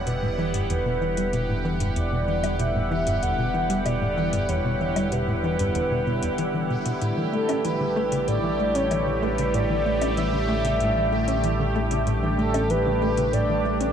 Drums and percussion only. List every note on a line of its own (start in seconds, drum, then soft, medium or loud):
0.07 closed hi-hat medium
0.54 closed hi-hat medium
0.70 closed hi-hat medium
1.17 closed hi-hat medium
1.33 closed hi-hat medium
1.80 closed hi-hat medium
1.96 closed hi-hat medium
2.44 closed hi-hat medium
2.44 low woodblock medium
2.60 closed hi-hat medium
3.07 closed hi-hat medium
3.23 closed hi-hat medium
3.70 closed hi-hat medium
3.86 closed hi-hat medium
3.86 low woodblock medium
4.33 closed hi-hat medium
4.49 closed hi-hat medium
4.96 closed hi-hat medium
4.96 low woodblock medium
5.12 closed hi-hat medium
5.59 closed hi-hat medium
5.75 closed hi-hat medium
6.23 closed hi-hat medium
6.38 closed hi-hat medium
6.86 closed hi-hat medium
7.01 closed hi-hat medium
7.49 closed hi-hat medium
7.49 low woodblock medium
7.65 closed hi-hat medium
8.12 closed hi-hat medium
8.28 closed hi-hat medium
8.75 closed hi-hat medium
8.91 closed hi-hat medium
8.91 low woodblock medium
9.38 closed hi-hat medium
9.54 closed hi-hat soft
10.02 closed hi-hat medium
10.02 low woodblock medium
10.17 closed hi-hat soft
10.65 closed hi-hat medium
10.80 closed hi-hat soft
11.28 closed hi-hat medium
11.44 closed hi-hat soft
11.91 closed hi-hat medium
12.07 closed hi-hat medium
12.54 closed hi-hat medium
12.54 low woodblock medium
12.70 closed hi-hat soft
13.17 closed hi-hat medium
13.33 closed hi-hat medium
13.81 closed hi-hat medium